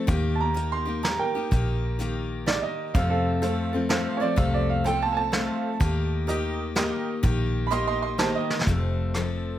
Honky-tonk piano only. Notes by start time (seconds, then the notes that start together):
3.42 A4 C5 F5
3.89 A4 C5 F5
4.85 A4 C5 F5
5.32 A4 C5 F5
6.28 G4 A#4 D#5
6.76 G4 A#4 D#5
7.70 G4 A#4 D#5
8.19 G4 A#4 D#5